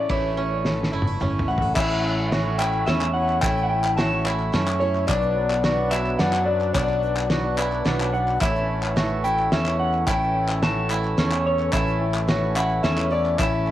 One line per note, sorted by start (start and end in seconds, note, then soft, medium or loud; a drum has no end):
0.00 0.10 A1 medium
0.00 0.10 A2 medium
0.00 0.64 E3 medium
0.00 0.09 A3 medium
0.00 0.10 A3 medium
0.00 0.10 C#4 medium
0.00 0.37 C#4 medium
0.00 0.10 E4 medium
0.00 0.11 E4 medium
0.00 0.38 E4 medium
0.00 0.66 A4 medium
0.00 0.11 D5 medium
0.09 1.72 A1 medium
0.09 0.89 A1 medium
0.09 0.65 A2 medium
0.09 1.72 A2 medium
0.09 1.19 A2 medium
0.09 0.63 E3 medium
0.09 0.31 A3 medium
0.09 0.65 A3 medium
0.09 0.32 C#4 medium
0.09 0.92 C#4 medium
0.09 0.65 C#4 medium
0.09 0.32 E4 medium
0.09 0.93 E4 medium
0.09 0.66 E4 medium
0.09 0.32 C#5 medium
0.09 1.48 C#5 medium
0.09 kick loud
0.09 ride medium
0.37 0.59 A3 medium
0.37 1.21 C#4 medium
0.37 0.59 C#4 medium
0.37 0.59 E4 soft
0.37 0.92 E4 medium
0.37 0.60 E5 medium
0.65 0.93 E3 medium
0.65 3.43 E3 medium
0.65 0.87 A3 medium
0.65 0.93 A3 medium
0.65 0.87 C#4 medium
0.65 0.92 C#4 medium
0.65 0.87 E4 medium
0.65 0.90 E4 medium
0.65 1.48 A4 medium
0.65 0.87 C#5 medium
0.65 snare medium
0.84 snare soft
0.92 1.18 F#1 medium
0.92 1.15 A3 medium
0.92 1.20 A3 soft
0.92 1.15 C#4 medium
0.92 1.07 C#4 medium
0.92 1.21 C#4 soft
0.92 1.20 E4 soft
0.92 1.15 E4 medium
0.92 1.76 E4 medium
0.92 1.15 C#5 medium
1.02 high tom medium
1.07 1.77 E4 soft
1.20 1.46 G1 medium
1.20 1.73 A2 medium
1.20 1.48 E3 medium
1.20 1.43 A3 medium
1.20 1.49 A3 medium
1.20 1.43 C#4 medium
1.20 2.87 C#4 medium
1.20 1.48 C#4 medium
1.20 1.43 E4 medium
1.20 1.47 E4 medium
1.20 1.43 C#5 medium
1.20 mid tom medium
1.39 mid tom medium
1.48 1.74 A1 medium
1.48 1.71 A3 medium
1.48 1.75 A3 medium
1.48 1.71 C#4 medium
1.48 1.75 C#4 medium
1.48 1.76 E4 medium
1.48 1.71 E4 medium
1.48 1.62 F#4 medium
1.48 1.71 C#5 medium
1.48 1.74 F#5 loud
1.58 floor tom medium
1.62 1.76 A4 medium
1.75 2.83 A1 medium
1.75 3.39 A1 medium
1.75 2.31 A2 medium
1.75 3.39 A2 medium
1.75 2.30 E3 medium
1.75 5.05 A3 medium
1.75 2.31 A3 loud
1.75 1.98 A3 medium
1.75 5.05 C#4 medium
1.75 2.32 C#4 loud
1.75 1.98 C#4 medium
1.75 5.05 E4 medium
1.75 2.59 E4 medium
1.75 1.98 E4 medium
1.75 2.32 E4 medium
1.75 5.05 C#5 medium
1.75 2.27 E5 loud
1.75 5.05 E5 medium
1.75 1.99 E5 medium
1.75 kick loud
1.75 clap loud
1.75 crash loud
1.75 shaker medium
1.90 shaker soft
2.04 2.26 A3 medium
2.04 2.26 C#4 medium
2.04 2.26 E4 medium
2.04 2.26 C#5 medium
2.04 2.26 E5 medium
2.31 2.85 E3 medium
2.31 2.54 A3 medium
2.31 2.86 A3 medium
2.31 2.54 C#4 medium
2.31 2.87 C#4 medium
2.31 2.54 E4 medium
2.31 2.88 E4 medium
2.31 3.97 F#4 medium
2.31 2.54 C#5 medium
2.31 2.54 E5 medium
2.31 snare loud
2.31 closed hi-hat medium
2.58 2.81 A3 medium
2.58 2.81 C#4 medium
2.58 3.42 E4 medium
2.58 2.81 E4 medium
2.58 2.81 C#5 medium
2.58 2.81 E5 medium
2.58 2.86 G5 loud
2.58 clap loud
2.58 shaker medium
2.74 clap soft
2.86 3.39 E2 loud
2.86 3.15 E3 medium
2.86 3.15 A3 medium
2.86 3.09 A3 medium
2.86 4.53 C#4 medium
2.86 3.09 C#4 medium
2.86 3.15 C#4 medium
2.86 3.09 E4 medium
2.86 3.13 E4 medium
2.86 3.09 C#5 medium
2.86 3.13 E5 loud
2.86 3.09 E5 medium
2.86 snare medium
2.86 closed hi-hat medium
2.86 shaker soft
3.01 clap medium
3.14 3.37 A3 medium
3.14 3.42 A3 medium
3.14 3.37 C#4 medium
3.14 3.42 C#4 medium
3.14 3.42 E4 medium
3.14 3.37 E4 medium
3.14 3.37 C#5 medium
3.14 3.37 E5 medium
3.14 3.41 F#5 loud
3.29 clap soft
3.41 5.05 A1 medium
3.41 4.50 A1 loud
3.41 3.98 A2 medium
3.41 5.05 A2 medium
3.41 3.96 E3 medium
3.41 3.64 A3 medium
3.41 3.97 A3 medium
3.41 3.65 C#4 medium
3.41 3.98 C#4 medium
3.41 4.25 E4 medium
3.41 3.65 E4 medium
3.41 3.99 E4 medium
3.41 3.65 C#5 medium
3.41 3.65 E5 medium
3.41 3.63 G5 loud
3.41 kick loud
3.41 clap loud
3.41 closed hi-hat medium
3.41 shaker medium
3.57 shaker soft
3.63 3.69 F#5 medium
3.69 3.92 A3 medium
3.69 3.92 C#4 medium
3.69 3.92 E4 medium
3.69 3.92 C#5 medium
3.69 3.92 E5 medium
3.69 3.96 G5 loud
3.84 clap medium
3.97 4.25 E3 medium
3.97 4.20 A3 medium
3.97 4.26 A3 medium
3.97 4.20 C#4 medium
3.97 4.25 C#4 medium
3.97 4.20 E4 medium
3.97 4.24 E4 medium
3.97 5.64 F#4 medium
3.97 4.20 C#5 medium
3.97 4.20 E5 medium
3.97 4.83 A5 loud
3.97 snare loud
3.97 closed hi-hat medium
4.25 4.47 A3 medium
4.25 4.52 A3 soft
4.25 4.47 C#4 medium
4.25 4.53 C#4 soft
4.25 4.53 E4 soft
4.25 4.47 E4 medium
4.25 5.91 E4 medium
4.25 4.47 C#5 medium
4.25 4.48 E5 medium
4.25 clap loud
4.39 clap soft
4.52 5.05 F#2 loud
4.52 4.80 E3 medium
4.52 4.75 A3 medium
4.52 4.81 A3 medium
4.52 4.75 C#4 medium
4.52 5.14 C#4 medium
4.52 4.80 C#4 medium
4.52 4.75 E4 medium
4.52 4.79 E4 medium
4.52 4.75 C#5 medium
4.52 4.75 E5 medium
4.52 snare medium
4.52 closed hi-hat medium
4.52 shaker soft
4.68 clap medium
4.80 5.03 A3 medium
4.80 5.08 A3 soft
4.80 5.03 C#4 medium
4.80 5.08 C#4 medium
4.80 5.08 E4 medium
4.80 5.03 E4 medium
4.80 5.07 C#5 loud
4.80 5.03 C#5 medium
4.80 5.03 E5 medium
4.95 clap soft
5.07 6.71 B1 medium
5.07 6.16 B1 loud
5.07 5.63 B2 medium
5.07 6.71 B2 medium
5.07 5.62 F#3 medium
5.07 5.30 F#3 medium
5.07 8.38 F#3 medium
5.07 5.62 B3 loud
5.07 5.30 B3 medium
5.07 8.38 B3 medium
5.07 6.19 D4 medium
5.07 5.63 D4 medium
5.07 5.30 D4 medium
5.07 8.38 D4 medium
5.07 5.64 F#4 loud
5.07 5.31 B4 medium
5.07 8.38 B4 medium
5.07 5.94 D5 loud
5.07 5.31 D5 medium
5.07 8.38 D5 medium
5.07 kick loud
5.07 clap loud
5.07 closed hi-hat medium
5.07 shaker medium
5.22 shaker soft
5.36 5.58 F#3 medium
5.36 5.58 B3 medium
5.36 5.58 D4 medium
5.36 5.58 B4 medium
5.36 5.58 D5 medium
5.50 clap medium
5.63 6.17 F#3 medium
5.63 5.86 F#3 medium
5.63 6.18 B3 medium
5.63 5.86 B3 medium
5.63 5.86 D4 medium
5.63 6.19 D4 medium
5.63 7.30 F#4 medium
5.63 6.20 F#4 medium
5.63 5.86 B4 medium
5.63 5.86 D5 medium
5.63 snare loud
5.63 closed hi-hat medium
5.91 6.14 F#3 medium
5.91 6.14 B3 medium
5.91 6.14 D4 medium
5.91 7.58 E4 medium
5.91 6.14 B4 medium
5.91 6.14 D5 medium
5.91 6.18 E5 loud
5.91 clap loud
5.91 shaker medium
6.06 clap soft
6.19 6.71 F#2 loud
6.19 6.73 F#3 medium
6.19 6.41 F#3 medium
6.19 6.74 B3 medium
6.19 6.41 B3 medium
6.19 6.75 D4 medium
6.19 6.41 D4 medium
6.19 6.74 D4 medium
6.19 6.75 F#4 medium
6.19 6.41 B4 medium
6.19 6.42 D5 medium
6.19 6.48 F#5 loud
6.19 snare medium
6.19 closed hi-hat medium
6.19 shaker soft
6.33 clap medium
6.46 6.69 F#3 medium
6.46 6.69 B3 medium
6.46 6.69 D4 medium
6.46 6.69 B4 medium
6.46 6.72 D5 medium
6.46 6.69 D5 medium
6.61 clap soft
6.73 8.37 B1 medium
6.73 7.82 B1 medium
6.73 7.30 B2 medium
6.73 8.37 B2 medium
6.73 7.28 F#3 medium
6.73 6.96 F#3 medium
6.73 7.29 B3 medium
6.73 6.97 B3 medium
6.73 6.96 D4 medium
6.73 7.85 D4 medium
6.73 7.30 D4 loud
6.73 7.31 F#4 loud
6.73 6.97 B4 medium
6.73 7.81 D5 medium
6.73 kick loud
6.73 clap loud
6.73 closed hi-hat medium
6.73 shaker medium
6.89 clap soft
7.02 7.24 F#3 medium
7.02 7.24 B3 medium
7.02 7.24 D4 medium
7.02 7.24 B4 medium
7.02 7.24 D5 medium
7.02 shaker soft
7.17 clap medium
7.30 7.52 F#3 medium
7.30 7.58 F#3 medium
7.30 7.52 B3 medium
7.30 7.58 B3 medium
7.30 7.52 D4 medium
7.30 7.56 D4 medium
7.30 8.96 F#4 medium
7.30 7.55 F#4 medium
7.30 7.52 B4 medium
7.30 7.52 C#5 medium
7.30 snare loud
7.30 closed hi-hat medium
7.56 7.79 F#3 medium
7.56 7.79 B3 medium
7.56 7.84 B3 soft
7.56 7.85 D4 medium
7.56 7.79 D4 medium
7.56 8.40 E4 medium
7.56 7.85 F#4 soft
7.56 7.79 B4 medium
7.56 7.80 D5 medium
7.56 clap loud
7.56 shaker medium
7.72 clap soft
7.85 8.37 B1 loud
7.85 8.40 F#3 medium
7.85 8.07 F#3 medium
7.85 8.41 B3 medium
7.85 8.07 B3 medium
7.85 9.59 D4 medium
7.85 8.07 D4 medium
7.85 8.41 D4 medium
7.85 8.41 F#4 medium
7.85 8.07 B4 medium
7.85 8.07 D5 medium
7.85 snare medium
7.85 closed hi-hat medium
8.01 clap medium
8.13 8.35 F#3 medium
8.13 8.35 B3 medium
8.13 8.35 D4 medium
8.13 8.35 B4 medium
8.13 8.35 D5 medium
8.13 8.40 F#5 loud
8.13 shaker soft
8.28 clap soft
8.40 10.03 A1 medium
8.40 9.48 A1 medium
8.40 8.96 A2 medium
8.40 10.03 A2 medium
8.40 8.95 E3 medium
8.40 13.71 E3 medium
8.40 8.63 A3 medium
8.40 8.96 A3 medium
8.40 13.71 A3 medium
8.40 8.63 C#4 medium
8.40 8.97 C#4 loud
8.40 13.71 C#4 medium
8.40 9.24 E4 loud
8.40 8.63 E4 medium
8.40 13.71 A4 medium
8.40 8.97 A4 loud
8.40 8.63 C#5 medium
8.40 13.71 C#5 medium
8.40 8.92 E5 loud
8.40 8.63 E5 medium
8.40 kick loud
8.40 clap loud
8.40 closed hi-hat medium
8.40 shaker medium
8.55 shaker soft
8.68 8.90 A3 medium
8.68 8.90 C#4 medium
8.68 8.90 E4 medium
8.68 8.90 C#5 medium
8.68 8.90 E5 medium
8.83 clap medium
8.96 9.51 E3 medium
8.96 9.18 A3 medium
8.96 9.52 A3 medium
8.96 9.18 C#4 medium
8.96 9.53 C#4 medium
8.96 9.18 E4 medium
8.96 10.62 F#4 medium
8.96 9.54 A4 medium
8.96 9.18 C#5 medium
8.96 9.18 E5 medium
8.96 snare loud
8.96 closed hi-hat medium
9.24 9.46 A3 medium
9.24 9.46 C#4 medium
9.24 10.07 E4 medium
9.24 9.46 E4 medium
9.24 9.46 C#5 medium
9.24 9.46 E5 medium
9.24 9.52 G5 loud
9.24 shaker loud
9.39 clap soft
9.51 10.04 E2 loud
9.51 10.07 E3 medium
9.51 9.73 A3 medium
9.51 10.08 A3 medium
9.51 9.73 C#4 medium
9.51 11.18 C#4 medium
9.51 10.08 C#4 medium
9.51 9.73 E4 medium
9.51 10.08 A4 medium
9.51 9.74 C#5 medium
9.51 9.73 E5 medium
9.51 9.79 E5 medium
9.51 snare medium
9.51 closed hi-hat medium
9.51 shaker soft
9.66 clap medium
9.79 10.01 A3 medium
9.79 10.01 C#4 soft
9.79 10.01 E4 medium
9.79 10.01 C#5 medium
9.79 10.01 E5 medium
9.79 10.05 F#5 loud
9.94 clap soft
10.07 11.69 A1 medium
10.07 11.14 A1 medium
10.07 10.62 A2 medium
10.07 11.69 A2 medium
10.07 10.62 E3 medium
10.07 10.29 A3 medium
10.07 10.63 A3 medium
10.07 10.29 C#4 medium
10.07 10.63 C#4 medium
10.07 10.29 E4 medium
10.07 10.90 E4 medium
10.07 10.64 A4 loud
10.07 10.29 C#5 medium
10.07 10.29 E5 medium
10.07 10.62 G5 loud
10.07 kick loud
10.07 clap loud
10.07 closed hi-hat medium
10.07 shaker medium
10.21 shaker soft
10.35 10.56 A3 medium
10.35 10.56 C#4 medium
10.35 10.57 E4 medium
10.35 10.57 C#5 medium
10.35 10.56 E5 medium
10.49 clap medium
10.62 11.17 E3 medium
10.62 10.84 A3 medium
10.62 11.18 A3 medium
10.62 10.84 C#4 medium
10.62 11.19 C#4 medium
10.62 10.84 E4 medium
10.62 12.28 F#4 medium
10.62 11.19 A4 medium
10.62 10.84 C#5 medium
10.62 10.84 E5 medium
10.62 11.42 A5 loud
10.62 snare medium
10.62 closed hi-hat medium
10.90 11.12 A3 medium
10.90 11.12 C#4 medium
10.90 11.12 E4 medium
10.90 11.73 E4 medium
10.90 11.12 C#5 medium
10.90 11.12 E5 medium
10.90 clap medium
10.90 shaker medium
11.04 clap soft
11.17 11.69 E2 loud
11.17 11.72 E3 medium
11.17 11.40 A3 medium
11.17 11.73 A3 medium
11.17 11.40 C#4 medium
11.17 12.84 C#4 medium
11.17 11.73 C#4 medium
11.17 11.39 E4 medium
11.17 11.73 A4 medium
11.17 11.40 C#5 medium
11.17 11.40 E5 medium
11.17 snare medium
11.17 closed hi-hat medium
11.17 shaker soft
11.32 clap medium
11.45 11.67 A3 medium
11.45 11.67 C#4 medium
11.45 11.67 E4 medium
11.45 11.67 C#5 medium
11.45 11.73 C#5 loud
11.45 11.67 E5 medium
11.59 clap soft
11.72 13.35 A1 medium
11.72 12.80 A1 loud
11.72 12.28 A2 medium
11.72 13.35 A2 medium
11.72 12.27 E3 medium
11.72 11.94 A3 medium
11.72 12.28 A3 loud
11.72 11.95 C#4 medium
11.72 12.28 C#4 medium
11.72 12.56 E4 loud
11.72 11.95 E4 medium
11.72 12.29 A4 loud
11.72 11.95 C#5 medium
11.72 12.56 E5 loud
11.72 11.95 E5 medium
11.72 kick loud
11.72 clap loud
11.72 closed hi-hat medium
11.72 shaker medium
11.87 shaker soft
12.01 12.22 A3 medium
12.01 12.22 C#4 medium
12.01 12.23 E4 medium
12.01 12.22 C#5 medium
12.01 12.23 G5 medium
12.14 clap medium
12.28 12.83 E3 medium
12.28 12.50 A3 medium
12.28 12.83 A3 medium
12.28 12.50 C#4 medium
12.28 12.84 C#4 medium
12.28 12.50 E4 medium
12.28 13.71 F#4 medium
12.28 12.85 A4 medium
12.28 12.50 C#5 medium
12.28 12.50 E5 medium
12.28 snare loud
12.28 closed hi-hat medium
12.56 12.78 A3 medium
12.56 12.78 C#4 medium
12.56 13.39 E4 medium
12.56 12.78 E4 medium
12.56 12.78 E5 medium
12.56 12.83 F#5 loud
12.56 clap loud
12.56 shaker medium
12.70 clap soft
12.83 13.35 E2 loud
12.83 13.11 E3 medium
12.83 13.11 A3 medium
12.83 13.06 A3 medium
12.83 13.71 C#4 medium
12.83 13.06 C#4 medium
12.83 13.11 C#4 medium
12.83 13.06 E4 medium
12.83 13.09 A4 medium
12.83 13.06 C#5 medium
12.83 13.11 E5 loud
12.83 snare medium
12.83 closed hi-hat medium
12.83 shaker soft
12.98 clap medium
13.10 13.33 A3 medium
13.10 13.38 A3 soft
13.10 13.39 C#4 medium
13.10 13.33 C#4 medium
13.10 13.34 E4 medium
13.10 13.39 A4 medium
13.10 13.34 C#5 medium
13.10 13.38 D5 medium
13.10 13.34 E5 medium
13.26 clap soft
13.38 13.71 A1 loud
13.38 13.71 A1 medium
13.38 13.71 A2 medium
13.38 13.71 E3 medium
13.38 13.61 A3 medium
13.38 13.71 A3 medium
13.38 13.61 C#4 medium
13.38 13.71 C#4 loud
13.38 13.71 E4 medium
13.38 13.61 E4 medium
13.38 13.71 A4 loud
13.38 13.61 C#5 medium
13.38 13.71 E5 loud
13.38 13.61 E5 medium
13.38 kick loud
13.38 clap loud
13.38 closed hi-hat medium
13.38 shaker loud
13.67 13.71 A3 medium
13.67 13.71 C#4 medium
13.67 13.71 E4 medium
13.67 13.71 C#5 medium
13.67 13.71 E5 medium
13.67 clap soft